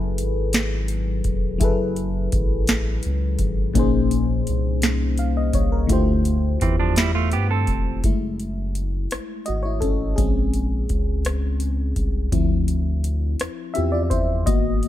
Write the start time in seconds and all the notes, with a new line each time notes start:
Already playing: F#1 F#3 E4 G#4 A4 B4
0.18 G#1, closed hi-hat
0.53 snare, closed hi-hat
0.88 closed hi-hat
1.24 E1, kick, closed hi-hat
1.58 F#1 F#3 E4 G#4, kick, closed hi-hat
1.63 A4 B4
1.96 closed hi-hat
2.32 A1, kick, closed hi-hat
2.67 snare, closed hi-hat
3.03 C#2, closed hi-hat
3.39 G#1, kick, closed hi-hat
3.74 A#1 A#2 A#3 C#4 D#4, kick, closed hi-hat
3.78 G#4 C5
4.11 closed hi-hat
4.47 C2, closed hi-hat
4.82 snare, closed hi-hat
5.18 F5, closed hi-hat
5.37 D#5
5.53 C2 C#5, kick, closed hi-hat
5.72 A#4
5.87 D2 D3 A3 E4 F4, kick, closed hi-hat
5.92 G4 C5
6.25 closed hi-hat
6.61 E2 E3 C4, kick, closed hi-hat
6.80 F3 D4
6.96 G3 E4, snare, closed hi-hat
7.15 A3 F4
7.32 G2 B3 G4, closed hi-hat
7.51 C4 A4
7.67 E1, kick, closed hi-hat
8.04 F#1 G#3 A3 E4, kick, closed hi-hat
8.40 closed hi-hat
8.75 closed hi-hat
9.11 G#1, cross-stick, closed hi-hat
9.46 G#1 F#4 D#5, closed hi-hat
9.63 E4 C#5
9.81 C#4 A4, kick, closed hi-hat
10.16 A#1 G#3 C4 C#4 G#4, kick, closed hi-hat
10.54 closed hi-hat
10.89 C#2, kick, closed hi-hat
11.25 cross-stick, closed hi-hat
11.60 closed hi-hat
11.96 C2, kick, closed hi-hat
12.32 D2 F3 C4 E4, kick, closed hi-hat
12.68 closed hi-hat
13.04 closed hi-hat
13.40 E2, cross-stick, closed hi-hat
13.74 C4 E4 F4 G4 E5, closed hi-hat
13.78 E2
13.92 F4 D5
14.03 D5
14.10 E4 C5, kick, closed hi-hat
14.46 G#1 A#3 B3 F#4 D#5, kick, closed hi-hat
14.83 closed hi-hat